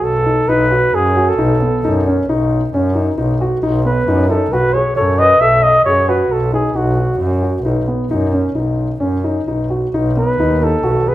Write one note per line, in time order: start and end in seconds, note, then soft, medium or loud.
0.00 0.44 B1 medium
0.00 0.11 F#4 medium
0.00 0.50 A4 medium
0.26 0.42 D#4 medium
0.48 0.89 B1 medium
0.48 0.64 D#4 medium
0.48 0.96 B4 medium
0.71 1.02 F#4 medium
0.94 1.35 F#2 medium
0.94 1.30 G#4 medium
1.16 1.32 F#4 medium
1.29 2.18 A4 medium
1.38 1.59 B1 loud
1.38 1.54 D#4 medium
1.62 1.77 B3 medium
1.84 2.25 F#2 medium
1.84 2.00 D#4 medium
2.07 2.22 C#4 medium
2.29 2.70 B1 medium
2.29 2.60 D#4 medium
2.74 3.14 F#2 medium
2.74 2.89 C#4 medium
2.95 3.11 D#4 medium
3.18 3.59 B1 medium
3.18 3.33 D#4 medium
3.41 3.56 F#4 medium
3.62 4.03 B1 loud
3.62 3.78 D#4 medium
3.85 4.01 B3 medium
3.85 4.27 B4 medium
4.07 4.48 F#2 medium
4.07 4.23 D#4 medium
4.30 4.45 D#4 medium
4.30 4.53 A4 medium
4.52 4.72 B1 medium
4.52 4.68 F#4 medium
4.52 4.75 B4 medium
4.74 4.90 G#4 medium
4.74 4.96 C#5 medium
4.96 5.37 F#2 medium
4.96 5.12 A4 medium
4.96 5.20 C#5 medium
5.19 5.34 B4 medium
5.19 5.42 D#5 medium
5.41 5.82 B1 medium
5.41 5.72 A4 medium
5.41 5.64 E5 medium
5.63 5.84 D#5 medium
5.85 6.27 F#2 medium
5.85 6.01 G#4 medium
5.85 6.10 C#5 medium
6.09 6.39 F#4 medium
6.09 6.34 B4 medium
6.30 6.71 B1 medium
6.30 6.54 A4 medium
6.53 6.68 D#4 medium
6.53 6.77 G#4 medium
6.74 7.15 B1 medium
6.74 6.91 D#4 medium
6.74 7.21 F#4 medium
6.98 7.28 F#4 medium
7.19 7.61 F#2 medium
7.43 7.58 F#4 medium
7.64 7.85 B1 medium
7.64 7.81 D#4 medium
7.88 8.03 B3 medium
8.10 8.52 F#2 medium
8.10 8.26 D#4 medium
8.32 8.48 C#4 medium
8.55 8.97 B1 medium
8.55 8.87 D#4 medium
9.00 9.44 F#2 medium
9.00 9.16 C#4 medium
9.24 9.40 D#4 medium
9.47 9.89 B1 medium
9.47 9.63 D#4 medium
9.70 9.86 F#4 medium
9.94 10.35 B1 medium
9.94 10.10 D#4 medium
10.17 10.32 B3 medium
10.17 10.65 B4 medium
10.39 10.80 D#2 medium
10.39 10.55 D#4 medium
10.62 10.78 D#4 medium
10.62 11.10 A4 medium
10.83 11.05 B1 medium
10.83 11.00 F#4 medium
11.07 11.15 G#4 medium
11.07 11.15 B4 medium